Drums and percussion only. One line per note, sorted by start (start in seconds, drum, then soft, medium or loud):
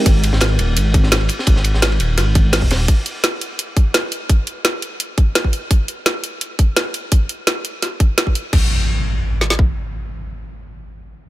0.06 kick loud
0.06 closed hi-hat medium
0.06 ride medium
0.24 closed hi-hat medium
0.24 ride medium
0.33 snare medium
0.40 snare loud
0.40 closed hi-hat medium
0.40 ride medium
0.59 closed hi-hat medium
0.59 ride medium
0.77 closed hi-hat medium
0.77 ride medium
0.94 kick loud
0.94 closed hi-hat medium
0.94 ride medium
1.03 snare soft
1.12 snare loud
1.12 closed hi-hat medium
1.12 ride medium
1.21 ride soft
1.29 closed hi-hat medium
1.29 ride medium
1.39 snare soft
1.47 kick loud
1.47 closed hi-hat medium
1.47 ride medium
1.56 snare soft
1.64 closed hi-hat medium
1.64 ride medium
1.74 snare soft
1.82 snare loud
1.82 closed hi-hat medium
1.82 ride medium
1.92 ride soft
2.00 closed hi-hat medium
2.00 ride medium
2.17 snare soft
2.17 closed hi-hat medium
2.17 ride medium
2.35 kick loud
2.35 closed hi-hat medium
2.35 ride medium
2.53 snare loud
2.53 closed hi-hat medium
2.53 open hi-hat medium
2.62 kick medium
2.71 snare medium
2.71 closed hi-hat medium
2.71 ride medium
2.88 kick loud
2.88 closed hi-hat medium
3.06 closed hi-hat medium
3.24 snare loud
3.24 closed hi-hat medium
3.41 closed hi-hat medium
3.59 closed hi-hat medium
3.77 kick loud
3.77 closed hi-hat medium
3.94 snare loud
3.94 closed hi-hat medium
4.12 closed hi-hat medium
4.29 kick loud
4.29 closed hi-hat medium
4.47 closed hi-hat medium
4.65 snare loud
4.65 closed hi-hat medium
4.82 closed hi-hat medium
5.00 closed hi-hat medium
5.18 kick loud
5.18 closed hi-hat medium
5.35 snare loud
5.35 closed hi-hat medium
5.44 kick medium
5.53 closed hi-hat medium
5.71 kick loud
5.71 closed hi-hat medium
5.88 closed hi-hat medium
6.06 snare loud
6.06 closed hi-hat medium
6.24 closed hi-hat medium
6.41 closed hi-hat medium
6.59 kick medium
6.59 closed hi-hat medium
6.76 snare loud
6.76 closed hi-hat medium
6.94 closed hi-hat medium
7.12 kick loud
7.12 closed hi-hat medium
7.29 closed hi-hat medium
7.47 snare loud
7.47 closed hi-hat medium
7.65 closed hi-hat medium
7.82 snare soft
7.82 closed hi-hat medium
8.00 kick loud
8.00 closed hi-hat medium
8.18 snare loud
8.18 closed hi-hat medium
8.27 kick medium
8.35 closed hi-hat medium
8.53 kick loud
8.53 crash medium
9.41 snare medium
9.50 snare medium
9.59 kick medium